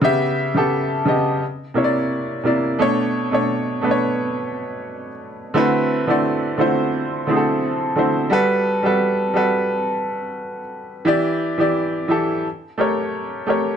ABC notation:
X:1
M:4/4
L:1/16
Q:"Swing 16ths" 1/4=87
K:D
V:1 name="Grand piano"
[C,B,Ge]3 [C,B,GA]3 [C,B,G_e]2 z2 [=C,_B,=E^cd]4 [=C,B,Ed]2 | [B,,A,Dc]3 [B,,A,Dc]3 [B,,A,DBc]6- [B,,A,DBc] z3 | [D,A,=CEFB]3 [D,A,CEFd]3 [D,A,CE=F^F=c]4 [D,A,CEF^GA]4 [D,A,CEFc]2 | [G,FAB]3 [G,FAB]3 [G,FAB]6- [G,FAB] z3 |
[E,EGd]3 [E,EGd]3 [E,EGA]2 z2 [A,G_Bc]4 [A,GBc]2 |]